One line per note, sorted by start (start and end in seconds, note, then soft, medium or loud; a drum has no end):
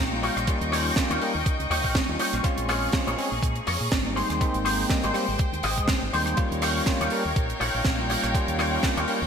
0.00 0.28 A#1 medium
0.00 2.41 D#4 medium
0.00 0.46 F5 medium
0.00 2.41 G5 medium
0.00 4.13 C#6 medium
0.11 0.45 G3 medium
0.11 0.45 A#3 medium
0.11 0.45 C#4 medium
0.11 0.45 F4 medium
0.23 0.48 F4 medium
0.23 0.48 G4 medium
0.23 0.48 C#5 medium
0.23 open hi-hat loud
0.36 0.47 A#1 medium
0.36 cross-stick medium
0.36 closed hi-hat medium
0.47 0.94 G3 medium
0.47 0.94 A#3 medium
0.47 0.94 C#4 medium
0.47 0.95 F4 loud
0.47 2.42 D#5 medium
0.47 kick loud
0.47 closed hi-hat medium
0.61 0.90 D#2 medium
0.61 closed hi-hat soft
0.72 0.91 F4 medium
0.72 0.91 G4 loud
0.72 0.91 C#5 loud
0.72 cross-stick medium
0.72 open hi-hat loud
0.96 1.19 G3 medium
0.96 1.19 A#3 medium
0.96 1.19 C#4 medium
0.96 1.19 F4 loud
0.96 kick loud
0.96 snare loud
0.96 closed hi-hat medium
1.10 1.17 D#2 medium
1.10 1.40 F4 medium
1.10 1.40 G4 medium
1.10 1.41 C#5 medium
1.10 closed hi-hat medium
1.21 1.32 G3 medium
1.21 1.32 A#3 medium
1.21 1.32 C#4 medium
1.21 1.32 A#4 medium
1.21 open hi-hat medium
1.35 1.42 D#2 medium
1.46 kick loud
1.46 closed hi-hat medium
1.59 1.66 C#2 medium
1.59 closed hi-hat soft
1.70 1.84 D#2 medium
1.70 1.95 F4 loud
1.70 1.95 G4 loud
1.70 1.95 C#5 loud
1.70 open hi-hat loud
1.84 1.98 A#1 medium
1.84 kick medium
1.95 kick loud
1.95 snare loud
1.95 closed hi-hat medium
2.08 2.15 D#2 medium
2.08 2.41 G3 medium
2.08 2.42 A#3 medium
2.08 2.42 C#4 medium
2.08 2.42 F4 medium
2.19 2.44 F4 medium
2.19 2.44 G4 medium
2.19 2.44 C#5 loud
2.19 open hi-hat loud
2.33 2.40 A#1 loud
2.33 cross-stick medium
2.33 closed hi-hat medium
2.43 2.90 G#3 medium
2.43 4.15 A#3 medium
2.43 2.91 C4 medium
2.43 2.91 C#4 medium
2.43 2.91 F4 loud
2.43 4.15 G#4 medium
2.43 kick loud
2.43 closed hi-hat medium
2.58 2.87 A#1 loud
2.58 closed hi-hat medium
2.69 2.88 G#4 loud
2.69 2.88 A#4 medium
2.69 2.88 C#5 loud
2.69 cross-stick medium
2.69 open hi-hat loud
2.92 3.15 G#3 medium
2.92 3.15 C4 medium
2.92 3.16 C#4 medium
2.92 3.16 F4 medium
2.92 kick loud
2.92 snare loud
2.92 closed hi-hat medium
3.07 3.14 A#1 medium
3.07 3.37 G#4 medium
3.07 3.37 A#4 medium
3.07 3.37 C#5 loud
3.07 closed hi-hat medium
3.17 3.28 G#3 medium
3.17 3.29 C4 medium
3.17 3.29 C#4 medium
3.17 3.29 G#4 medium
3.17 open hi-hat medium
3.32 3.38 A#1 medium
3.42 3.59 A#2 medium
3.42 kick loud
3.42 closed hi-hat medium
3.56 closed hi-hat soft
3.67 3.76 F2 loud
3.67 3.92 G#4 medium
3.67 3.92 A#4 medium
3.67 3.92 C#5 loud
3.67 open hi-hat loud
3.81 3.87 A#2 medium
3.92 4.21 G#1 medium
3.92 kick loud
3.92 snare loud
3.92 closed hi-hat medium
4.04 4.38 G3 medium
4.04 4.38 A#3 medium
4.04 4.38 C4 medium
4.04 4.38 D#4 medium
4.16 6.36 G#3 medium
4.16 4.57 G4 medium
4.16 4.57 G#4 medium
4.16 4.57 C5 loud
4.16 6.36 C5 medium
4.16 6.36 G5 medium
4.16 open hi-hat medium
4.30 4.40 D#2 medium
4.30 cross-stick medium
4.30 closed hi-hat medium
4.41 4.87 A#3 medium
4.41 4.88 C4 medium
4.41 4.88 D#4 loud
4.41 muted fingered electric bass stroke soft
4.41 kick loud
4.41 closed hi-hat medium
4.54 4.83 G#1 medium
4.54 closed hi-hat soft
4.65 4.85 G4 loud
4.65 4.84 G#4 loud
4.65 4.84 C5 loud
4.65 cross-stick medium
4.65 open hi-hat loud
4.89 5.12 G3 medium
4.89 5.12 A#3 medium
4.89 5.12 C4 medium
4.89 5.12 D#4 loud
4.89 kick loud
4.89 snare loud
4.89 closed hi-hat medium
5.03 5.10 G#1 loud
5.03 5.34 G4 medium
5.03 5.34 G#4 medium
5.03 5.34 C5 loud
5.03 closed hi-hat medium
5.13 5.25 G3 medium
5.13 5.25 A#3 medium
5.13 5.25 C4 medium
5.13 5.25 G4 medium
5.13 cross-stick medium
5.13 open hi-hat medium
5.28 5.35 G#1 medium
5.39 kick loud
5.39 closed hi-hat medium
5.53 5.59 D#2 medium
5.53 closed hi-hat soft
5.63 5.79 G#1 loud
5.63 5.88 G4 loud
5.63 5.89 G#4 medium
5.63 5.88 D#5 loud
5.63 open hi-hat loud
5.78 5.91 G#2 medium
5.78 kick medium
5.78 closed hi-hat medium
5.88 kick loud
5.88 snare loud
5.88 closed hi-hat medium
6.02 6.09 G#1 medium
6.12 6.37 D#2 medium
6.12 6.35 G3 medium
6.12 6.35 A#3 medium
6.12 6.35 C4 medium
6.12 6.35 D#4 medium
6.12 6.38 G4 medium
6.12 6.38 G#4 medium
6.12 6.38 C5 loud
6.12 open hi-hat loud
6.26 cross-stick medium
6.26 closed hi-hat medium
6.36 6.84 G3 medium
6.36 6.84 A#3 medium
6.36 6.84 C#4 medium
6.36 9.27 D#4 medium
6.36 6.84 F4 loud
6.36 9.27 C#5 medium
6.36 9.27 F5 medium
6.36 9.27 G5 medium
6.36 kick loud
6.36 closed hi-hat medium
6.51 6.80 D#2 medium
6.51 closed hi-hat medium
6.62 6.81 F4 medium
6.62 6.81 G4 medium
6.62 6.81 C#5 loud
6.62 cross-stick medium
6.62 open hi-hat loud
6.86 7.09 G3 medium
6.86 7.09 A#3 medium
6.86 7.09 C#4 medium
6.86 7.09 F4 loud
6.86 kick loud
6.86 snare loud
6.86 closed hi-hat medium
7.00 7.07 D#2 medium
7.00 7.31 F4 medium
7.00 7.31 G4 medium
7.00 7.31 C#5 loud
7.00 closed hi-hat medium
7.10 7.22 G3 medium
7.10 7.22 A#3 medium
7.10 7.22 C#4 medium
7.10 7.22 A#4 medium
7.10 open hi-hat medium
7.25 7.32 D#2 medium
7.36 7.52 A#1 medium
7.36 kick loud
7.36 closed hi-hat medium
7.50 closed hi-hat medium
7.60 7.69 A#1 loud
7.60 7.85 F4 medium
7.60 7.85 G4 medium
7.60 7.85 C#5 loud
7.60 open hi-hat loud
7.75 7.81 A#1 medium
7.85 8.15 A#1 medium
7.85 kick loud
7.85 snare loud
7.85 closed hi-hat medium
7.99 8.32 G3 medium
7.99 8.32 A#3 medium
7.99 8.32 C#4 medium
7.99 8.32 F4 medium
8.09 8.34 F4 medium
8.09 8.34 G4 medium
8.09 8.34 C#5 medium
8.09 open hi-hat loud
8.24 8.34 A#1 medium
8.24 cross-stick medium
8.24 closed hi-hat medium
8.34 8.81 G3 medium
8.34 8.81 A#3 medium
8.34 8.81 C#4 medium
8.34 8.81 F4 loud
8.34 kick loud
8.34 closed hi-hat medium
8.48 8.77 D#2 medium
8.48 closed hi-hat medium
8.59 8.78 F4 loud
8.59 8.78 G4 medium
8.59 8.78 C#5 loud
8.59 cross-stick medium
8.59 open hi-hat loud
8.83 9.05 G3 medium
8.83 9.06 A#3 medium
8.83 9.06 C#4 medium
8.83 9.06 F4 loud
8.83 kick loud
8.83 snare loud
8.83 closed hi-hat medium
8.97 9.04 D#2 medium
8.97 9.27 F4 medium
8.97 9.27 G4 medium
8.97 9.27 C#5 loud
8.97 closed hi-hat medium
9.08 9.19 G3 medium
9.08 9.19 A#3 medium
9.08 9.19 C#4 medium
9.08 9.19 A#4 medium
9.08 open hi-hat medium
9.22 9.27 D#2 medium